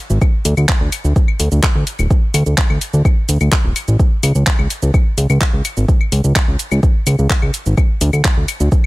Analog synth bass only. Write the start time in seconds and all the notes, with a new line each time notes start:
0.10 G#1
0.45 D2
0.57 D2
0.81 D2
1.04 D2
1.40 D2
1.52 D2
1.75 D2
1.99 D1
2.34 D2
2.46 D2
2.70 D2
2.94 D2
3.29 D2
3.41 D2
3.64 D1
3.88 A1
4.23 C#2
4.35 C#2
4.59 C#2
4.82 C#2
5.18 C#2
5.30 C#2
5.53 C#2
5.77 G#1
6.12 C#2
6.24 C#2
6.48 C#2
6.72 C#2
7.07 C#2
7.19 C#2
7.42 C#2
7.66 G#1
8.01 D2
8.13 D2
8.37 D2
8.60 D2